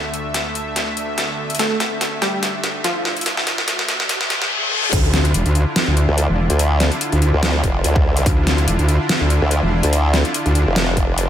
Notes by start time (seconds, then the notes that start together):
Already playing: D2 D3 A3 D4 E5, riser
0.14 closed hi-hat
0.34 snare, closed hi-hat
0.55 closed hi-hat
0.76 snare, closed hi-hat
0.97 closed hi-hat
1.18 snare, closed hi-hat
1.50 closed hi-hat
1.55 closed hi-hat
1.59 A3 A4, snare, closed hi-hat
1.80 snare, closed hi-hat
2.01 snare, closed hi-hat
2.22 G3 G4, snare, closed hi-hat
2.43 snare, closed hi-hat
2.64 snare, closed hi-hat
2.84 F3 F4, snare, closed hi-hat
3.05 snare
3.17 closed hi-hat
3.21 closed hi-hat
3.26 snare, closed hi-hat
3.37 snare
3.47 snare, closed hi-hat
3.58 snare
3.68 snare, closed hi-hat
3.79 snare
3.89 snare, closed hi-hat
4.00 snare
4.09 snare, closed hi-hat, reverse cymbal
4.21 snare
4.30 snare, closed hi-hat
4.42 snare
4.62 high tom
4.72 mid tom
4.83 mid tom
4.93 D2 D3 D4 E4 F4, kick, closed hi-hat, crash
5.14 snare, closed hi-hat
5.25 closed hi-hat
5.34 E1, closed hi-hat
5.46 D2, closed hi-hat
5.55 closed hi-hat
5.76 snare, closed hi-hat
5.87 D2
5.97 closed hi-hat
6.08 D2
6.18 closed hi-hat
6.29 E1
6.50 D2, closed hi-hat
6.59 closed hi-hat
6.80 snare, closed hi-hat
6.92 closed hi-hat
7.01 closed hi-hat
7.12 D2, closed hi-hat
7.22 closed hi-hat
7.33 D2
7.43 snare, closed hi-hat
7.64 F1, kick, closed hi-hat
7.84 D2, closed hi-hat
7.96 kick
8.17 closed hi-hat
8.26 D2, kick, closed hi-hat
8.47 snare, closed hi-hat
8.58 closed hi-hat
8.68 E1, closed hi-hat
8.79 D2, closed hi-hat
8.89 closed hi-hat
9.09 snare, closed hi-hat
9.21 D2
9.30 closed hi-hat
9.42 D2
9.51 closed hi-hat
9.62 E1
9.83 D2, closed hi-hat
9.93 closed hi-hat
10.14 snare, closed hi-hat
10.25 closed hi-hat
10.34 closed hi-hat
10.46 D2, closed hi-hat
10.55 closed hi-hat
10.67 F1
10.76 snare, closed hi-hat
10.97 kick, closed hi-hat
11.18 closed hi-hat